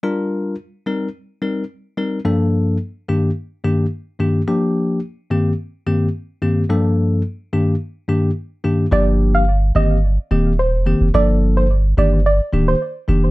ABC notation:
X:1
M:4/4
L:1/16
Q:1/4=108
K:Gm
V:1 name="Synth pluck"
z16 | z16 | z16 | z16 |
d z2 f2 z e2 z4 c3 z | d z2 c z2 d z d z2 c z4 |]
V:2 name="Tine electric piano"
[G,DFB]4 z2 [G,CEB]2 z2 [G,CEB]2 z2 [G,CEB]2 | [G,,F,B,DA]4 z2 [G,,E,B,DG]2 z2 [G,,E,B,DG]2 z2 [G,,E,B,DG]2 | [F,B,DG]4 z2 [G,,E,B,CG]2 z2 [G,,E,B,CG]2 z2 [G,,E,B,CG]2 | [G,,F,B,DA]4 z2 [G,,E,B,DG]2 z2 [G,,E,B,DG]2 z2 [G,,E,B,DG]2 |
[F,B,DG]4 z2 [E,B,CG]2 z2 [E,B,CG]2 z2 [E,B,CG]2 | [F,B,DA]4 z2 [E,B,DG]2 z2 [E,B,DG]2 z2 [E,B,DG]2 |]
V:3 name="Sub bass" clef=bass
z16 | z16 | z16 | z16 |
G,,,6 G,,,4 E,,,3 F,,,2 F,,, | G,,,6 G,,,4 D,,,2 z2 F,,,2 |]